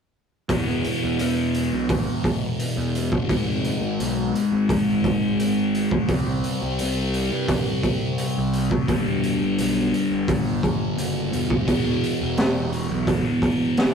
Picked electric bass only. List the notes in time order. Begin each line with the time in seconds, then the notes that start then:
0.49 E2
0.68 E2
1.04 E2
1.21 E2
1.73 B1
2.77 E2
3.30 G#1
3.48 F1
3.82 G#1
4.00 B1
4.52 G#1
6.09 C2
6.27 C2
6.62 C2
6.81 C2
7.32 G2
8.38 C2
8.89 G1
9.07 E1
9.42 G1
9.59 B1
10.11 G1
10.63 G1
10.98 F#1
11.33 E1
11.68 E1
11.86 E1
12.21 E1
12.39 E1
12.91 B1